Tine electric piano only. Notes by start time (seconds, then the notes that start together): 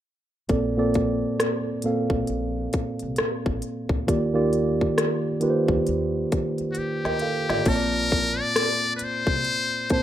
0.49 A#2 A#3 C4 A4 D5
0.77 A#2 A#3 C4 A4 D5
1.84 A#2 A#3 C4 A4 F5
4.07 D#3 A#3 F4 G4 D5
4.33 D#3 A#3 F4 G4 D5
5.41 D#3 A#3 F4 G4 B4
5.50 C5
7.05 A#4 G5
7.22 A4 F5
7.49 F4 D5
7.66 A#2 A#3 C4 C#5 A5
7.76 D5
9.90 A#2 A#3 C4 C5 A5